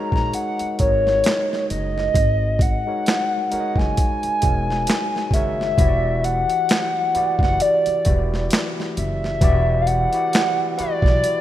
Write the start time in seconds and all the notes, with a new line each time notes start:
Already playing: G#3 D#4 F#4 A#4 C#5 D#5 A#5
0.12 A#1 A#5, kick, snare
0.34 F#5, closed hi-hat
0.59 muted upright bass stroke, closed hi-hat
0.78 G#1 G#3 D#4 F#4 A#4 C#5, kick, closed hi-hat
0.88 D#5
1.07 snare
1.24 finger snap, snare, closed hi-hat
1.53 snare
1.70 F#1 D#5, closed hi-hat
1.98 snare
2.15 G#1, kick, closed hi-hat
2.59 F#5, kick, closed hi-hat
2.86 G#3 D#4 F#4 A#4 C#5
3.06 finger snap, snare, closed hi-hat
3.51 G#3 D#4 F#4 A#4 C#5 F#5, muted upright bass stroke, closed hi-hat
3.60 D#5
3.76 F#1 G#5, kick, snare
3.97 kick, closed hi-hat
4.23 muted upright bass stroke, closed hi-hat
4.42 E1 G#3 D#4 F#4 A#4 C#5, kick, closed hi-hat
4.70 snare
4.87 finger snap, snare, closed hi-hat
5.16 snare
5.31 F#1 D#3 G#3 F#4 E5, kick, closed hi-hat
5.35 A#4 C#5
5.61 snare
5.78 E1 E3 E4 F#4 G4 C#5, kick, closed hi-hat
5.88 D5
6.24 F#5, closed hi-hat
6.50 closed hi-hat
6.69 finger snap, snare, closed hi-hat
7.14 E3 E4 F#4 G4 D5, muted upright bass stroke, closed hi-hat
7.39 F#1 F#5, kick, snare
7.60 D5, closed hi-hat
7.86 muted upright bass stroke, closed hi-hat
8.05 E1 E3 E4 F#4 G4 D5, kick, closed hi-hat
8.34 snare
8.51 finger snap, snare, closed hi-hat
8.80 snare
8.97 F#1 E5, closed hi-hat
9.24 snare
9.41 E1 E3 E4 F#4 G4 D5, kick, closed hi-hat
9.82 F5
9.87 F#5, closed hi-hat
10.13 E3 E4 F#4 G4 D5, closed hi-hat
10.33 finger snap, snare, closed hi-hat
10.78 E3 E4 F#4 G4 B4 D5, muted upright bass stroke, closed hi-hat
11.02 B1, kick, snare
11.24 closed hi-hat